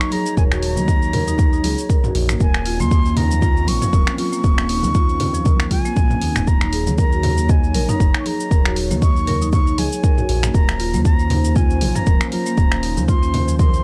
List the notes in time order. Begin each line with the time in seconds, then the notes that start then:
Already playing: F#3 D#4 C#5 C#6
0.00 D#4, finger snap, cabasa
0.11 G#4 A#5, open hi-hat, muted conga, high conga
0.26 cabasa
0.37 D#1 A#4 G#5, kick, cabasa
0.51 F#4, finger snap, muted conga, cabasa
0.63 A#5, open hi-hat
0.76 D#2 A#3, high conga, low conga, cabasa
0.88 D#5, kick, cabasa
1.02 cabasa
1.13 A#4, mid tom, open hi-hat, low conga
1.27 D#4, muted conga, cabasa
1.38 kick, low conga, cabasa
1.53 D#4, cabasa
1.64 C#2 G#4, open hi-hat, muted conga, high conga
1.78 cabasa
1.89 A#4, kick, cabasa
2.04 F#4, mid tom, cabasa
2.15 A#1, open hi-hat, muted conga
2.29 A#3, finger snap, mid tom, cabasa
2.40 D#1 A#3 C4 C#4 A#4 G#5, kick, cabasa
2.54 finger snap, muted conga, cabasa
2.65 F4, open hi-hat
2.80 D#2 A#3 C6, high conga, low conga, cabasa
2.91 kick, muted conga, cabasa
3.05 A#3, cabasa
3.17 D#4 A#5, mid tom, open hi-hat, low conga
3.31 muted conga, high conga, cabasa
3.41 F4, kick, low conga, cabasa
3.57 C#4, cabasa
3.67 A#1 C#6, open hi-hat, muted conga, high conga, low conga
3.82 F3, mid tom, cabasa
3.92 D#1 A#4, kick, high conga, cabasa
4.07 finger snap, cabasa
4.18 F4 C#6, open hi-hat, muted conga, high conga
4.33 A#3, cabasa
4.44 D#1, kick, cabasa
4.58 A#3, finger snap, muted conga, cabasa
4.69 D#4, open hi-hat
4.83 D#2, high conga, low conga, cabasa
4.95 F4, kick, muted conga, cabasa
5.09 C#4, cabasa
5.20 mid tom, open hi-hat, low conga
5.34 F3, muted conga, cabasa
5.45 A#4, kick, high conga, low conga, cabasa
5.60 finger snap, cabasa
5.71 C#2 F4 G#5, kick, open hi-hat, muted conga, high conga
5.85 A#3, cabasa
5.96 A#1, kick, cabasa
6.10 A#3, mid tom, high conga, cabasa
6.21 D#2 D#4, open hi-hat, muted conga
6.36 D#1, finger snap, mid tom, cabasa
6.47 D#1 F#3 D#4 C#5 A#5, kick, cabasa
6.61 D#4, finger snap, muted conga, cabasa
6.73 G#4, open hi-hat
6.87 D#2, high conga, low conga, cabasa
6.98 A#4 A#5, kick, muted conga, cabasa
7.12 F#4, cabasa
7.23 mid tom, open hi-hat, low conga
7.38 A#3, muted conga, high conga, cabasa
7.49 D#5 G#5, kick, low conga, cabasa
7.64 cabasa
7.74 A#1 A#4, open hi-hat, muted conga, high conga, low conga
7.89 D#4 A#5, mid tom, cabasa
8.00 F#1, kick, high conga, cabasa
8.14 D#4, finger snap, cabasa
8.20 C#6
8.25 G#4 A#5, open hi-hat, muted conga, high conga
8.40 cabasa
8.51 D#1 A#4, kick, cabasa
8.65 F#4, finger snap, muted conga, cabasa
8.76 open hi-hat
8.91 D#2 A#3, high conga, low conga, cabasa
9.02 D#5 C#6, kick, muted conga, cabasa
9.16 cabasa
9.27 A#4, mid tom, open hi-hat, low conga
9.42 D#4, muted conga, cabasa
9.53 C#6, kick, low conga, cabasa
9.67 D#4, cabasa
9.78 C#2 G#4 G#5, open hi-hat, muted conga, high conga
9.92 cabasa
10.04 A#4, kick, cabasa
10.18 F#4, mid tom, cabasa
10.29 A#1, open hi-hat, muted conga
10.43 A#3, finger snap, mid tom, cabasa
10.54 D#1 A#3 C#4 A#4 C5 A#5, kick, cabasa
10.68 finger snap, muted conga, cabasa
10.80 F4, open hi-hat
10.94 D#2 A#3, high conga, low conga, cabasa
11.05 A#5, kick, muted conga, cabasa
11.19 A#3, cabasa
11.30 D#4, mid tom, open hi-hat, low conga
11.44 muted conga, high conga, cabasa
11.56 F4 G#5, kick, low conga, cabasa
11.70 C#4, cabasa
11.81 A#1, open hi-hat, muted conga, high conga, low conga
11.95 F3 A#5, mid tom, cabasa
12.07 D#1 A#4, kick, high conga, cabasa
12.21 finger snap, cabasa
12.32 F4 A#5, open hi-hat, muted conga, high conga
12.46 A#3, cabasa
12.58 D#1, kick, cabasa
12.72 A#3, finger snap, muted conga, cabasa
12.83 D#4, open hi-hat
12.97 D#2, high conga, low conga, cabasa
13.08 F4 C6, kick, muted conga, cabasa
13.23 C#4, cabasa
13.34 mid tom, open hi-hat, low conga
13.48 F3, muted conga, cabasa
13.59 A#4 C6, kick, high conga, low conga, cabasa
13.74 cabasa